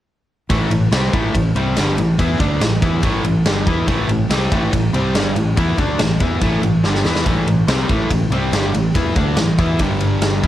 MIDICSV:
0, 0, Header, 1, 4, 480
1, 0, Start_track
1, 0, Key_signature, 0, "minor"
1, 0, Tempo, 422833
1, 568, Time_signature, 4, 2, 24, 8
1, 11889, End_track
2, 0, Start_track
2, 0, Title_t, "Overdriven electric guitar"
2, 0, Program_c, 0, 29
2, 564, Note_on_c, 0, 45, 93
2, 570, Note_on_c, 0, 52, 93
2, 576, Note_on_c, 0, 57, 100
2, 793, Note_off_c, 0, 45, 0
2, 798, Note_off_c, 0, 52, 0
2, 805, Note_off_c, 0, 57, 0
2, 807, Note_on_c, 0, 45, 63
2, 812, Note_on_c, 0, 52, 70
2, 999, Note_off_c, 0, 45, 0
2, 1002, Note_off_c, 0, 52, 0
2, 1045, Note_on_c, 0, 48, 88
2, 1054, Note_on_c, 0, 55, 94
2, 1060, Note_on_c, 0, 60, 90
2, 1279, Note_off_c, 0, 48, 0
2, 1284, Note_off_c, 0, 55, 0
2, 1286, Note_on_c, 0, 45, 92
2, 1287, Note_off_c, 0, 60, 0
2, 1291, Note_on_c, 0, 52, 100
2, 1297, Note_on_c, 0, 57, 97
2, 1514, Note_off_c, 0, 45, 0
2, 1514, Note_off_c, 0, 52, 0
2, 1525, Note_off_c, 0, 57, 0
2, 1527, Note_on_c, 0, 52, 69
2, 1528, Note_on_c, 0, 45, 63
2, 1719, Note_off_c, 0, 45, 0
2, 1719, Note_off_c, 0, 52, 0
2, 1764, Note_on_c, 0, 48, 79
2, 1768, Note_on_c, 0, 55, 87
2, 1776, Note_on_c, 0, 60, 96
2, 1998, Note_off_c, 0, 48, 0
2, 2000, Note_off_c, 0, 55, 0
2, 2004, Note_off_c, 0, 60, 0
2, 2009, Note_on_c, 0, 43, 83
2, 2016, Note_on_c, 0, 50, 93
2, 2024, Note_on_c, 0, 55, 97
2, 2241, Note_off_c, 0, 43, 0
2, 2242, Note_off_c, 0, 50, 0
2, 2244, Note_off_c, 0, 55, 0
2, 2246, Note_on_c, 0, 45, 60
2, 2249, Note_on_c, 0, 52, 69
2, 2438, Note_off_c, 0, 45, 0
2, 2440, Note_off_c, 0, 52, 0
2, 2479, Note_on_c, 0, 52, 93
2, 2486, Note_on_c, 0, 59, 100
2, 2491, Note_on_c, 0, 64, 101
2, 2716, Note_off_c, 0, 52, 0
2, 2719, Note_off_c, 0, 59, 0
2, 2722, Note_off_c, 0, 64, 0
2, 2722, Note_on_c, 0, 50, 79
2, 2729, Note_on_c, 0, 57, 91
2, 2735, Note_on_c, 0, 62, 97
2, 2957, Note_off_c, 0, 50, 0
2, 2960, Note_off_c, 0, 57, 0
2, 2963, Note_off_c, 0, 62, 0
2, 2963, Note_on_c, 0, 45, 63
2, 2969, Note_on_c, 0, 52, 73
2, 3156, Note_off_c, 0, 45, 0
2, 3159, Note_off_c, 0, 52, 0
2, 3203, Note_on_c, 0, 52, 90
2, 3208, Note_on_c, 0, 59, 96
2, 3214, Note_on_c, 0, 64, 108
2, 3433, Note_off_c, 0, 52, 0
2, 3439, Note_off_c, 0, 59, 0
2, 3439, Note_on_c, 0, 45, 84
2, 3442, Note_off_c, 0, 64, 0
2, 3447, Note_on_c, 0, 52, 95
2, 3454, Note_on_c, 0, 57, 99
2, 3675, Note_off_c, 0, 45, 0
2, 3679, Note_off_c, 0, 52, 0
2, 3682, Note_off_c, 0, 57, 0
2, 3690, Note_on_c, 0, 45, 65
2, 3696, Note_on_c, 0, 52, 72
2, 3879, Note_off_c, 0, 45, 0
2, 3883, Note_off_c, 0, 52, 0
2, 3930, Note_on_c, 0, 43, 91
2, 3940, Note_on_c, 0, 50, 92
2, 3946, Note_on_c, 0, 55, 91
2, 4160, Note_off_c, 0, 43, 0
2, 4161, Note_off_c, 0, 50, 0
2, 4166, Note_on_c, 0, 52, 86
2, 4168, Note_off_c, 0, 55, 0
2, 4173, Note_on_c, 0, 59, 93
2, 4178, Note_on_c, 0, 64, 92
2, 4393, Note_off_c, 0, 52, 0
2, 4400, Note_on_c, 0, 45, 106
2, 4402, Note_off_c, 0, 59, 0
2, 4404, Note_off_c, 0, 64, 0
2, 4407, Note_on_c, 0, 52, 109
2, 4414, Note_on_c, 0, 57, 107
2, 4628, Note_off_c, 0, 45, 0
2, 4631, Note_off_c, 0, 52, 0
2, 4641, Note_on_c, 0, 45, 61
2, 4642, Note_off_c, 0, 57, 0
2, 4645, Note_on_c, 0, 52, 69
2, 4835, Note_off_c, 0, 45, 0
2, 4837, Note_off_c, 0, 52, 0
2, 4876, Note_on_c, 0, 48, 97
2, 4885, Note_on_c, 0, 55, 85
2, 4891, Note_on_c, 0, 60, 104
2, 5113, Note_off_c, 0, 48, 0
2, 5117, Note_off_c, 0, 55, 0
2, 5119, Note_on_c, 0, 45, 90
2, 5121, Note_off_c, 0, 60, 0
2, 5128, Note_on_c, 0, 52, 106
2, 5138, Note_on_c, 0, 57, 98
2, 5354, Note_off_c, 0, 45, 0
2, 5359, Note_off_c, 0, 52, 0
2, 5364, Note_off_c, 0, 57, 0
2, 5367, Note_on_c, 0, 45, 61
2, 5371, Note_on_c, 0, 52, 74
2, 5557, Note_off_c, 0, 45, 0
2, 5559, Note_off_c, 0, 52, 0
2, 5599, Note_on_c, 0, 48, 93
2, 5607, Note_on_c, 0, 55, 84
2, 5610, Note_on_c, 0, 60, 89
2, 5834, Note_off_c, 0, 48, 0
2, 5837, Note_on_c, 0, 43, 87
2, 5838, Note_off_c, 0, 55, 0
2, 5840, Note_off_c, 0, 60, 0
2, 5844, Note_on_c, 0, 50, 89
2, 5853, Note_on_c, 0, 55, 105
2, 6070, Note_off_c, 0, 50, 0
2, 6073, Note_off_c, 0, 43, 0
2, 6074, Note_on_c, 0, 45, 63
2, 6079, Note_off_c, 0, 55, 0
2, 6083, Note_on_c, 0, 52, 67
2, 6271, Note_off_c, 0, 45, 0
2, 6275, Note_off_c, 0, 52, 0
2, 6315, Note_on_c, 0, 52, 90
2, 6319, Note_on_c, 0, 59, 97
2, 6330, Note_on_c, 0, 64, 107
2, 6552, Note_off_c, 0, 52, 0
2, 6554, Note_off_c, 0, 59, 0
2, 6560, Note_off_c, 0, 64, 0
2, 6561, Note_on_c, 0, 50, 96
2, 6570, Note_on_c, 0, 57, 99
2, 6577, Note_on_c, 0, 62, 91
2, 6795, Note_off_c, 0, 50, 0
2, 6800, Note_off_c, 0, 57, 0
2, 6803, Note_off_c, 0, 62, 0
2, 6805, Note_on_c, 0, 45, 62
2, 6809, Note_on_c, 0, 52, 70
2, 6996, Note_off_c, 0, 45, 0
2, 6998, Note_off_c, 0, 52, 0
2, 7044, Note_on_c, 0, 52, 93
2, 7049, Note_on_c, 0, 59, 104
2, 7056, Note_on_c, 0, 64, 103
2, 7269, Note_off_c, 0, 52, 0
2, 7275, Note_on_c, 0, 45, 87
2, 7279, Note_off_c, 0, 59, 0
2, 7283, Note_off_c, 0, 64, 0
2, 7283, Note_on_c, 0, 52, 95
2, 7290, Note_on_c, 0, 57, 94
2, 7504, Note_off_c, 0, 45, 0
2, 7508, Note_off_c, 0, 52, 0
2, 7517, Note_on_c, 0, 45, 63
2, 7520, Note_off_c, 0, 57, 0
2, 7521, Note_on_c, 0, 52, 68
2, 7713, Note_off_c, 0, 45, 0
2, 7715, Note_off_c, 0, 52, 0
2, 7757, Note_on_c, 0, 43, 86
2, 7765, Note_on_c, 0, 50, 93
2, 7773, Note_on_c, 0, 55, 87
2, 7993, Note_off_c, 0, 43, 0
2, 7997, Note_off_c, 0, 50, 0
2, 8001, Note_off_c, 0, 55, 0
2, 8002, Note_on_c, 0, 52, 79
2, 8009, Note_on_c, 0, 59, 84
2, 8016, Note_on_c, 0, 64, 93
2, 8236, Note_off_c, 0, 52, 0
2, 8239, Note_off_c, 0, 59, 0
2, 8243, Note_off_c, 0, 64, 0
2, 8243, Note_on_c, 0, 45, 91
2, 8249, Note_on_c, 0, 52, 98
2, 8259, Note_on_c, 0, 57, 101
2, 8476, Note_off_c, 0, 45, 0
2, 8476, Note_off_c, 0, 52, 0
2, 8484, Note_off_c, 0, 57, 0
2, 8488, Note_on_c, 0, 45, 61
2, 8490, Note_on_c, 0, 52, 69
2, 8678, Note_off_c, 0, 45, 0
2, 8679, Note_off_c, 0, 52, 0
2, 8714, Note_on_c, 0, 48, 86
2, 8727, Note_on_c, 0, 55, 86
2, 8733, Note_on_c, 0, 60, 93
2, 8952, Note_off_c, 0, 48, 0
2, 8957, Note_on_c, 0, 45, 92
2, 8958, Note_off_c, 0, 55, 0
2, 8961, Note_off_c, 0, 60, 0
2, 8964, Note_on_c, 0, 52, 101
2, 8970, Note_on_c, 0, 57, 103
2, 9191, Note_off_c, 0, 45, 0
2, 9191, Note_off_c, 0, 52, 0
2, 9200, Note_off_c, 0, 57, 0
2, 9204, Note_on_c, 0, 45, 60
2, 9205, Note_on_c, 0, 52, 62
2, 9396, Note_off_c, 0, 45, 0
2, 9397, Note_off_c, 0, 52, 0
2, 9440, Note_on_c, 0, 48, 79
2, 9445, Note_on_c, 0, 55, 87
2, 9451, Note_on_c, 0, 60, 101
2, 9675, Note_off_c, 0, 48, 0
2, 9678, Note_off_c, 0, 55, 0
2, 9681, Note_off_c, 0, 60, 0
2, 9682, Note_on_c, 0, 43, 85
2, 9691, Note_on_c, 0, 50, 83
2, 9697, Note_on_c, 0, 55, 102
2, 9916, Note_off_c, 0, 43, 0
2, 9921, Note_off_c, 0, 50, 0
2, 9923, Note_off_c, 0, 55, 0
2, 9926, Note_on_c, 0, 45, 62
2, 9927, Note_on_c, 0, 52, 66
2, 10118, Note_off_c, 0, 45, 0
2, 10118, Note_off_c, 0, 52, 0
2, 10159, Note_on_c, 0, 52, 92
2, 10170, Note_on_c, 0, 59, 106
2, 10174, Note_on_c, 0, 64, 107
2, 10394, Note_off_c, 0, 52, 0
2, 10398, Note_on_c, 0, 50, 89
2, 10400, Note_off_c, 0, 59, 0
2, 10402, Note_off_c, 0, 64, 0
2, 10410, Note_on_c, 0, 57, 90
2, 10414, Note_on_c, 0, 62, 93
2, 10632, Note_off_c, 0, 50, 0
2, 10636, Note_on_c, 0, 45, 59
2, 10638, Note_off_c, 0, 57, 0
2, 10642, Note_off_c, 0, 62, 0
2, 10643, Note_on_c, 0, 52, 62
2, 10833, Note_off_c, 0, 45, 0
2, 10836, Note_off_c, 0, 52, 0
2, 10877, Note_on_c, 0, 52, 93
2, 10885, Note_on_c, 0, 59, 94
2, 10892, Note_on_c, 0, 64, 107
2, 11114, Note_off_c, 0, 52, 0
2, 11116, Note_on_c, 0, 43, 89
2, 11118, Note_off_c, 0, 59, 0
2, 11122, Note_off_c, 0, 64, 0
2, 11124, Note_on_c, 0, 50, 87
2, 11129, Note_on_c, 0, 55, 101
2, 11828, Note_off_c, 0, 50, 0
2, 11833, Note_on_c, 0, 52, 81
2, 11834, Note_off_c, 0, 43, 0
2, 11838, Note_off_c, 0, 55, 0
2, 11842, Note_on_c, 0, 59, 89
2, 11852, Note_on_c, 0, 64, 91
2, 11889, Note_off_c, 0, 52, 0
2, 11889, Note_off_c, 0, 59, 0
2, 11889, Note_off_c, 0, 64, 0
2, 11889, End_track
3, 0, Start_track
3, 0, Title_t, "Fingered electric bass"
3, 0, Program_c, 1, 33
3, 560, Note_on_c, 1, 33, 86
3, 787, Note_off_c, 1, 33, 0
3, 799, Note_on_c, 1, 33, 70
3, 1026, Note_off_c, 1, 33, 0
3, 1039, Note_on_c, 1, 36, 85
3, 1266, Note_off_c, 1, 36, 0
3, 1285, Note_on_c, 1, 33, 85
3, 1509, Note_off_c, 1, 33, 0
3, 1523, Note_on_c, 1, 33, 72
3, 1748, Note_off_c, 1, 33, 0
3, 1764, Note_on_c, 1, 36, 89
3, 1989, Note_off_c, 1, 36, 0
3, 2005, Note_on_c, 1, 31, 92
3, 2229, Note_off_c, 1, 31, 0
3, 2244, Note_on_c, 1, 33, 76
3, 2468, Note_off_c, 1, 33, 0
3, 2482, Note_on_c, 1, 40, 88
3, 2707, Note_off_c, 1, 40, 0
3, 2722, Note_on_c, 1, 38, 90
3, 2947, Note_off_c, 1, 38, 0
3, 2966, Note_on_c, 1, 33, 78
3, 3189, Note_off_c, 1, 33, 0
3, 3203, Note_on_c, 1, 40, 89
3, 3427, Note_off_c, 1, 40, 0
3, 3439, Note_on_c, 1, 33, 89
3, 3665, Note_off_c, 1, 33, 0
3, 3683, Note_on_c, 1, 33, 76
3, 3907, Note_off_c, 1, 33, 0
3, 3918, Note_on_c, 1, 31, 88
3, 4144, Note_off_c, 1, 31, 0
3, 4163, Note_on_c, 1, 40, 88
3, 4387, Note_off_c, 1, 40, 0
3, 4405, Note_on_c, 1, 33, 93
3, 4628, Note_off_c, 1, 33, 0
3, 4638, Note_on_c, 1, 33, 74
3, 4864, Note_off_c, 1, 33, 0
3, 4882, Note_on_c, 1, 36, 94
3, 5106, Note_off_c, 1, 36, 0
3, 5127, Note_on_c, 1, 33, 93
3, 5349, Note_off_c, 1, 33, 0
3, 5369, Note_on_c, 1, 33, 73
3, 5590, Note_off_c, 1, 33, 0
3, 5598, Note_on_c, 1, 36, 91
3, 5824, Note_off_c, 1, 36, 0
3, 5840, Note_on_c, 1, 31, 94
3, 6065, Note_off_c, 1, 31, 0
3, 6084, Note_on_c, 1, 33, 77
3, 6307, Note_off_c, 1, 33, 0
3, 6325, Note_on_c, 1, 40, 88
3, 6548, Note_off_c, 1, 40, 0
3, 6560, Note_on_c, 1, 38, 94
3, 6785, Note_off_c, 1, 38, 0
3, 6804, Note_on_c, 1, 33, 80
3, 7027, Note_off_c, 1, 33, 0
3, 7037, Note_on_c, 1, 40, 88
3, 7264, Note_off_c, 1, 40, 0
3, 7279, Note_on_c, 1, 33, 93
3, 7504, Note_off_c, 1, 33, 0
3, 7518, Note_on_c, 1, 33, 74
3, 7744, Note_off_c, 1, 33, 0
3, 7757, Note_on_c, 1, 31, 89
3, 7983, Note_off_c, 1, 31, 0
3, 7998, Note_on_c, 1, 40, 83
3, 8224, Note_off_c, 1, 40, 0
3, 8236, Note_on_c, 1, 33, 90
3, 8463, Note_off_c, 1, 33, 0
3, 8477, Note_on_c, 1, 33, 77
3, 8704, Note_off_c, 1, 33, 0
3, 8711, Note_on_c, 1, 36, 96
3, 8940, Note_off_c, 1, 36, 0
3, 8955, Note_on_c, 1, 33, 83
3, 9183, Note_off_c, 1, 33, 0
3, 9200, Note_on_c, 1, 33, 76
3, 9418, Note_off_c, 1, 33, 0
3, 9425, Note_on_c, 1, 36, 85
3, 9657, Note_off_c, 1, 36, 0
3, 9672, Note_on_c, 1, 31, 91
3, 9901, Note_off_c, 1, 31, 0
3, 9911, Note_on_c, 1, 33, 75
3, 10141, Note_off_c, 1, 33, 0
3, 10156, Note_on_c, 1, 40, 81
3, 10384, Note_off_c, 1, 40, 0
3, 10399, Note_on_c, 1, 38, 92
3, 10625, Note_off_c, 1, 38, 0
3, 10631, Note_on_c, 1, 33, 75
3, 10861, Note_off_c, 1, 33, 0
3, 10880, Note_on_c, 1, 40, 90
3, 11105, Note_off_c, 1, 40, 0
3, 11117, Note_on_c, 1, 31, 85
3, 11796, Note_off_c, 1, 31, 0
3, 11841, Note_on_c, 1, 40, 94
3, 11889, Note_off_c, 1, 40, 0
3, 11889, End_track
4, 0, Start_track
4, 0, Title_t, "Drums"
4, 567, Note_on_c, 9, 36, 99
4, 567, Note_on_c, 9, 51, 90
4, 681, Note_off_c, 9, 36, 0
4, 681, Note_off_c, 9, 51, 0
4, 806, Note_on_c, 9, 51, 70
4, 920, Note_off_c, 9, 51, 0
4, 1047, Note_on_c, 9, 51, 96
4, 1051, Note_on_c, 9, 38, 107
4, 1161, Note_off_c, 9, 51, 0
4, 1164, Note_off_c, 9, 38, 0
4, 1288, Note_on_c, 9, 36, 105
4, 1288, Note_on_c, 9, 51, 75
4, 1401, Note_off_c, 9, 36, 0
4, 1402, Note_off_c, 9, 51, 0
4, 1528, Note_on_c, 9, 36, 81
4, 1531, Note_on_c, 9, 51, 95
4, 1642, Note_off_c, 9, 36, 0
4, 1644, Note_off_c, 9, 51, 0
4, 1767, Note_on_c, 9, 51, 65
4, 1881, Note_off_c, 9, 51, 0
4, 2002, Note_on_c, 9, 51, 95
4, 2005, Note_on_c, 9, 38, 103
4, 2116, Note_off_c, 9, 51, 0
4, 2119, Note_off_c, 9, 38, 0
4, 2246, Note_on_c, 9, 51, 69
4, 2359, Note_off_c, 9, 51, 0
4, 2486, Note_on_c, 9, 36, 99
4, 2487, Note_on_c, 9, 51, 92
4, 2599, Note_off_c, 9, 36, 0
4, 2600, Note_off_c, 9, 51, 0
4, 2724, Note_on_c, 9, 51, 68
4, 2725, Note_on_c, 9, 36, 103
4, 2837, Note_off_c, 9, 51, 0
4, 2838, Note_off_c, 9, 36, 0
4, 2965, Note_on_c, 9, 51, 91
4, 2969, Note_on_c, 9, 38, 108
4, 3079, Note_off_c, 9, 51, 0
4, 3082, Note_off_c, 9, 38, 0
4, 3204, Note_on_c, 9, 36, 99
4, 3205, Note_on_c, 9, 51, 67
4, 3318, Note_off_c, 9, 36, 0
4, 3318, Note_off_c, 9, 51, 0
4, 3437, Note_on_c, 9, 51, 84
4, 3443, Note_on_c, 9, 36, 102
4, 3551, Note_off_c, 9, 51, 0
4, 3557, Note_off_c, 9, 36, 0
4, 3684, Note_on_c, 9, 51, 64
4, 3797, Note_off_c, 9, 51, 0
4, 3924, Note_on_c, 9, 51, 89
4, 3927, Note_on_c, 9, 38, 113
4, 4038, Note_off_c, 9, 51, 0
4, 4041, Note_off_c, 9, 38, 0
4, 4166, Note_on_c, 9, 36, 99
4, 4166, Note_on_c, 9, 51, 66
4, 4279, Note_off_c, 9, 51, 0
4, 4280, Note_off_c, 9, 36, 0
4, 4403, Note_on_c, 9, 51, 89
4, 4406, Note_on_c, 9, 36, 101
4, 4516, Note_off_c, 9, 51, 0
4, 4520, Note_off_c, 9, 36, 0
4, 4644, Note_on_c, 9, 51, 68
4, 4758, Note_off_c, 9, 51, 0
4, 4885, Note_on_c, 9, 51, 94
4, 4889, Note_on_c, 9, 38, 116
4, 4999, Note_off_c, 9, 51, 0
4, 5002, Note_off_c, 9, 38, 0
4, 5128, Note_on_c, 9, 36, 103
4, 5128, Note_on_c, 9, 51, 74
4, 5242, Note_off_c, 9, 36, 0
4, 5242, Note_off_c, 9, 51, 0
4, 5369, Note_on_c, 9, 36, 89
4, 5370, Note_on_c, 9, 51, 93
4, 5483, Note_off_c, 9, 36, 0
4, 5484, Note_off_c, 9, 51, 0
4, 5608, Note_on_c, 9, 51, 69
4, 5722, Note_off_c, 9, 51, 0
4, 5845, Note_on_c, 9, 51, 94
4, 5849, Note_on_c, 9, 38, 105
4, 5959, Note_off_c, 9, 51, 0
4, 5962, Note_off_c, 9, 38, 0
4, 6084, Note_on_c, 9, 51, 67
4, 6198, Note_off_c, 9, 51, 0
4, 6324, Note_on_c, 9, 51, 102
4, 6326, Note_on_c, 9, 36, 105
4, 6437, Note_off_c, 9, 51, 0
4, 6440, Note_off_c, 9, 36, 0
4, 6563, Note_on_c, 9, 51, 72
4, 6565, Note_on_c, 9, 36, 101
4, 6677, Note_off_c, 9, 51, 0
4, 6678, Note_off_c, 9, 36, 0
4, 6800, Note_on_c, 9, 51, 95
4, 6804, Note_on_c, 9, 38, 113
4, 6914, Note_off_c, 9, 51, 0
4, 6917, Note_off_c, 9, 38, 0
4, 7039, Note_on_c, 9, 51, 70
4, 7043, Note_on_c, 9, 36, 105
4, 7152, Note_off_c, 9, 51, 0
4, 7157, Note_off_c, 9, 36, 0
4, 7279, Note_on_c, 9, 51, 90
4, 7283, Note_on_c, 9, 36, 99
4, 7393, Note_off_c, 9, 51, 0
4, 7396, Note_off_c, 9, 36, 0
4, 7526, Note_on_c, 9, 51, 58
4, 7639, Note_off_c, 9, 51, 0
4, 7763, Note_on_c, 9, 38, 59
4, 7877, Note_off_c, 9, 38, 0
4, 7887, Note_on_c, 9, 38, 57
4, 8000, Note_off_c, 9, 38, 0
4, 8001, Note_on_c, 9, 38, 84
4, 8115, Note_off_c, 9, 38, 0
4, 8121, Note_on_c, 9, 38, 87
4, 8235, Note_off_c, 9, 38, 0
4, 8242, Note_on_c, 9, 36, 101
4, 8242, Note_on_c, 9, 51, 90
4, 8356, Note_off_c, 9, 36, 0
4, 8356, Note_off_c, 9, 51, 0
4, 8485, Note_on_c, 9, 51, 64
4, 8599, Note_off_c, 9, 51, 0
4, 8720, Note_on_c, 9, 51, 90
4, 8724, Note_on_c, 9, 38, 108
4, 8834, Note_off_c, 9, 51, 0
4, 8837, Note_off_c, 9, 38, 0
4, 8960, Note_on_c, 9, 51, 73
4, 8962, Note_on_c, 9, 36, 103
4, 9074, Note_off_c, 9, 51, 0
4, 9075, Note_off_c, 9, 36, 0
4, 9202, Note_on_c, 9, 36, 90
4, 9203, Note_on_c, 9, 51, 90
4, 9316, Note_off_c, 9, 36, 0
4, 9317, Note_off_c, 9, 51, 0
4, 9445, Note_on_c, 9, 51, 68
4, 9558, Note_off_c, 9, 51, 0
4, 9685, Note_on_c, 9, 51, 96
4, 9688, Note_on_c, 9, 38, 107
4, 9798, Note_off_c, 9, 51, 0
4, 9802, Note_off_c, 9, 38, 0
4, 9927, Note_on_c, 9, 51, 72
4, 10041, Note_off_c, 9, 51, 0
4, 10159, Note_on_c, 9, 51, 96
4, 10162, Note_on_c, 9, 36, 102
4, 10273, Note_off_c, 9, 51, 0
4, 10276, Note_off_c, 9, 36, 0
4, 10395, Note_on_c, 9, 51, 76
4, 10401, Note_on_c, 9, 36, 106
4, 10508, Note_off_c, 9, 51, 0
4, 10515, Note_off_c, 9, 36, 0
4, 10632, Note_on_c, 9, 51, 98
4, 10636, Note_on_c, 9, 38, 115
4, 10746, Note_off_c, 9, 51, 0
4, 10749, Note_off_c, 9, 38, 0
4, 10879, Note_on_c, 9, 51, 72
4, 10882, Note_on_c, 9, 36, 109
4, 10992, Note_off_c, 9, 51, 0
4, 10996, Note_off_c, 9, 36, 0
4, 11114, Note_on_c, 9, 51, 95
4, 11122, Note_on_c, 9, 36, 98
4, 11228, Note_off_c, 9, 51, 0
4, 11235, Note_off_c, 9, 36, 0
4, 11356, Note_on_c, 9, 51, 69
4, 11469, Note_off_c, 9, 51, 0
4, 11596, Note_on_c, 9, 51, 93
4, 11599, Note_on_c, 9, 38, 107
4, 11709, Note_off_c, 9, 51, 0
4, 11713, Note_off_c, 9, 38, 0
4, 11845, Note_on_c, 9, 36, 98
4, 11845, Note_on_c, 9, 51, 63
4, 11889, Note_off_c, 9, 36, 0
4, 11889, Note_off_c, 9, 51, 0
4, 11889, End_track
0, 0, End_of_file